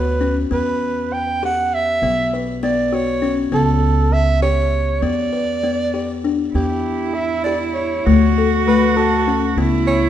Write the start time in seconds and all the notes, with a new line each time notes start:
Already playing: D2 B4
0.21 C#4
0.51 E2 B3 B4
1.13 G5
1.43 G4 F#5
1.74 E5
2.02 B1 B3
2.33 B4
2.63 B3 D5
2.92 F#4 C#5
3.22 C#4
3.52 C#2 B3 A4
4.13 E5
4.42 G4 C#5
5.02 E2 B3 D5
5.33 B4
5.63 B3
5.94 G4
6.24 D4
6.54 E2 B3 E4 G4
7.14 E5
7.44 G4 D5
7.74 C#5
8.06 D2 A3 F#4
8.38 A4
8.67 A3 B4
8.97 F#4 A4
9.27 C#4
9.56 C#2 B3 E4
9.87 C#5